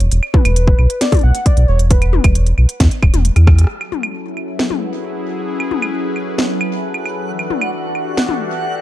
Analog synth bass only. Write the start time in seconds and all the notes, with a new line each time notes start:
0.00 E1
0.11 E1
0.45 E1
0.79 B1
1.23 B1
1.57 B1
1.68 E1
2.24 E1
2.58 B1
2.80 E2
3.03 D1
3.14 E1
3.36 E2